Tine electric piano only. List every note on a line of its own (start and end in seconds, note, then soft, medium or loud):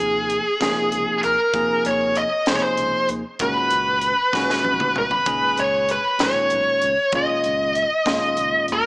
0.00 0.41 C3 medium
0.00 0.41 F3 medium
0.00 0.42 A#3 medium
0.00 0.42 D#4 medium
0.00 0.42 G#4 medium
0.61 1.34 C3 medium
0.61 1.34 F3 medium
0.61 1.35 A#3 medium
0.61 1.35 D#4 medium
0.61 1.35 G#4 medium
1.53 2.27 C3 medium
1.53 2.27 F3 medium
1.53 2.27 A#3 medium
1.53 2.27 D#4 medium
1.53 2.28 G#4 medium
2.48 3.21 C3 medium
2.48 3.21 F3 medium
2.48 3.21 A#3 medium
2.48 3.21 D#4 medium
2.48 3.21 G#4 medium
3.40 4.13 A#2 medium
3.40 4.14 D#3 medium
3.40 4.14 G#3 medium
3.40 4.14 C#4 medium
3.40 4.14 F#4 medium
4.33 5.06 A#2 medium
4.33 5.07 D#3 medium
4.33 5.07 G#3 medium
4.33 5.07 C#4 medium
4.33 5.07 F#4 medium
5.26 6.00 A#2 medium
5.26 6.00 D#3 medium
5.26 6.00 G#3 medium
5.26 6.00 C#4 medium
5.26 6.00 G#4 medium
6.19 6.92 A#2 medium
6.19 6.93 D#3 medium
6.19 6.93 G#3 medium
6.19 6.93 C#4 medium
6.19 6.93 D#4 medium
7.13 7.86 A#2 medium
7.13 7.86 D#3 medium
7.13 7.87 G#3 medium
7.13 7.87 C#4 medium
7.13 7.87 F4 medium
8.05 8.79 A#2 medium
8.05 8.79 D#3 medium
8.05 8.79 G#3 medium
8.05 8.79 C#4 medium
8.05 8.80 F4 medium